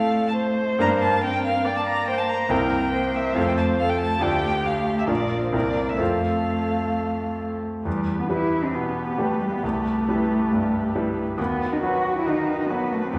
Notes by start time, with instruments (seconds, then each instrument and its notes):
Already playing: grand piano A2 A3 C4 C5, cello A3, viola A4, violin F5
0.28 violin A5
0.36 viola C5
0.79 grand piano G2 A#3 D4 A#4, cello A#3, violin A#5
1.02 violin A5
1.22 cello C4, viola A#4, violin G5
1.46 violin F5
1.64 cello A#3, viola D5, violin G5
1.77 violin A5
1.86 violin A#5
2.08 viola C5, violin G5
2.18 violin A5
2.29 violin A#5
2.49 grand piano C2 C4 E4 A#4, cello A#3, viola A#4, violin G5
2.95 viola C5
3.15 violin E5
3.35 grand piano F2 C4 F4 A4, cello A3, violin F5
3.48 violin G5
3.58 violin A5
3.79 cello A3, viola A4, violin F5
3.90 violin G5
4.01 violin A5
4.21 grand piano D2 D4 F4 A4, cello A3, viola G4, violin G5
4.65 cello A3, violin F5
4.99 violin E5
5.07 grand piano A#1 D4 F4 A#4, cello A#3, viola F4, violin D5
5.43 violin C5
5.52 grand piano C2 C4 E4 A#4, cello A#3, viola A#4, violin D5
5.90 violin E5
5.97 grand piano F2 C4 F4 A4, cello A3, viola A4, violin F5
7.85 grand piano E2, cello G3, viola G4, violin B4
8.19 cello B3
8.29 grand piano G3 G4 B4, cello E4
8.64 cello C4
8.75 grand piano B2, cello B3
9.08 cello B3
9.18 grand piano G3 G4 B4, cello A3
9.41 cello G3
9.53 cello B3
9.63 grand piano C2, cello A3
10.09 grand piano G3 E4 B4
10.52 grand piano G2
10.95 grand piano G3 E4 B4
11.38 grand piano D#2, cello B3, viola F#4, violin B4
11.72 cello D#4
11.82 grand piano F#3 F#4 B4, cello F#4
12.18 cello E4
12.27 grand piano D#3, cello D#4
12.60 cello D#4
12.70 grand piano F#3 F#4 B4, cello B3
12.92 cello A3
13.04 cello C4
13.13 grand piano E2, cello B3, viola G4